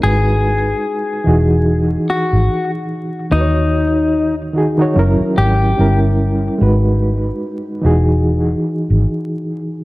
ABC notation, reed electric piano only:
X:1
M:4/4
L:1/16
Q:"Swing 16ths" 1/4=73
K:G#m
V:1 name="Reed electric piano"
[G,FB]4- [G,FB] z [E,DFG]6- [E,DFG] z3 | [D,DFBc]4- [D,DFBc] z [D,DFG] [D,DFc] [F,CEA]3 z [=G,_DE_B]3 z | [G,DFB]4- [G,DFB] z [E,DFG]6- [E,DFG] z3 |]